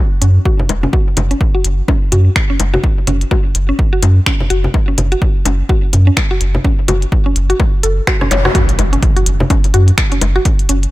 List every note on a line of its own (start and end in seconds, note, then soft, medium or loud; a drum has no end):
0.21 0.39 F#2 medium
0.21 0.27 C#4 medium
0.21 closed hi-hat medium
0.45 0.49 F#4 loud
0.45 kick loud
0.59 low conga medium
0.69 0.86 E1 medium
0.69 closed hi-hat medium
0.69 low bongo medium
0.83 0.87 C#4 medium
0.83 low conga medium
0.93 0.96 F#4 medium
0.93 kick loud
1.17 1.34 F#1 loud
1.17 closed hi-hat medium
1.17 low bongo medium
1.17 low conga medium
1.31 1.35 C#4 medium
1.31 closed hi-hat soft
1.41 kick loud
1.55 1.57 F#4 loud
1.64 1.82 F#1 loud
1.64 closed hi-hat medium
1.88 1.94 C#4 medium
1.88 kick loud
1.88 low bongo medium
2.12 2.29 F#2 medium
2.12 2.15 F#4 loud
2.12 closed hi-hat medium
2.12 low conga medium
2.36 finger snap medium
2.36 kick loud
2.50 2.54 C#4 medium
2.60 2.77 F#1 medium
2.60 closed hi-hat medium
2.60 low bongo medium
2.74 2.76 F#4 loud
2.74 low conga medium
2.84 kick loud
3.07 3.24 F#1 loud
3.07 3.13 C#4 medium
3.07 closed hi-hat medium
3.07 low conga medium
3.21 closed hi-hat soft
3.31 3.34 F#4 loud
3.31 kick loud
3.31 low bongo medium
3.55 3.72 F#1 loud
3.55 closed hi-hat medium
3.69 3.73 C#4 medium
3.79 kick loud
3.93 3.95 F#4 loud
4.03 4.20 F#2 medium
4.03 closed hi-hat medium
4.03 low bongo medium
4.26 4.32 C#4 medium
4.26 finger snap loud
4.26 kick loud
4.40 low conga medium
4.50 4.67 F#1 loud
4.50 4.53 F#4 loud
4.50 closed hi-hat medium
4.64 low conga medium
4.74 kick loud
4.74 low bongo medium
4.88 4.92 C#4 medium
4.98 5.15 F#1 loud
4.98 closed hi-hat medium
4.98 low conga medium
5.12 5.14 F#4 loud
5.12 closed hi-hat soft
5.22 kick loud
5.45 5.63 F#1 loud
5.45 5.51 C#4 medium
5.45 closed hi-hat medium
5.45 low bongo medium
5.69 5.73 F#4 loud
5.69 kick loud
5.93 6.10 F#2 medium
5.93 closed hi-hat medium
5.93 low conga medium
6.07 6.11 C#4 medium
6.17 finger snap loud
6.17 kick loud
6.17 low bongo medium
6.31 6.33 F#4 loud
6.41 6.58 F#1 loud
6.41 closed hi-hat medium
6.55 low conga medium
6.64 6.70 C#4 medium
6.64 kick loud
6.88 7.05 F#1 loud
6.88 6.91 F#4 loud
6.88 closed hi-hat medium
6.88 low bongo medium
6.88 low conga medium
7.02 closed hi-hat soft
7.12 kick loud
7.26 7.30 C#4 medium
7.36 7.53 F#1 loud
7.36 closed hi-hat medium
7.50 7.52 F#4 loud
7.50 closed hi-hat soft
7.60 kick loud
7.60 low bongo medium
7.83 8.01 F#1 medium
7.83 7.87 A4 medium
7.83 closed hi-hat medium
8.07 8.15 F#4 loud
8.07 finger snap loud
8.07 kick loud
8.07 cross-stick medium
8.21 8.25 C#4 loud
8.21 cross-stick medium
8.21 low conga medium
8.31 8.48 F#1 medium
8.31 8.34 C#5 medium
8.31 closed hi-hat medium
8.31 zap medium
8.31 low bongo medium
8.45 8.49 F#4 loud
8.45 cross-stick medium
8.45 low conga medium
8.55 8.58 F#4 loud
8.55 kick loud
8.55 closed hi-hat medium
8.55 impact medium
8.69 closed hi-hat soft
8.79 8.96 F#1 loud
8.79 closed hi-hat medium
8.79 low bongo medium
8.93 8.97 C#4 medium
8.93 closed hi-hat soft
9.03 kick loud
9.03 closed hi-hat medium
9.16 9.19 F#4 loud
9.16 closed hi-hat soft
9.26 9.43 F#1 loud
9.26 closed hi-hat medium
9.40 low conga loud
9.50 9.56 C#4 medium
9.50 kick loud
9.50 closed hi-hat medium
9.50 low bongo medium
9.64 closed hi-hat soft
9.74 9.91 F#2 medium
9.74 9.77 F#4 loud
9.74 closed hi-hat medium
9.88 closed hi-hat soft
9.98 finger snap loud
9.98 kick loud
9.98 closed hi-hat medium
10.12 10.16 C#4 medium
10.12 closed hi-hat soft
10.21 10.39 F#1 loud
10.21 closed hi-hat medium
10.21 low bongo medium
10.36 10.38 F#4 loud
10.45 kick loud
10.45 closed hi-hat medium
10.59 closed hi-hat soft
10.69 10.86 F#1 loud
10.69 10.75 C#4 medium
10.69 closed hi-hat loud
10.83 closed hi-hat soft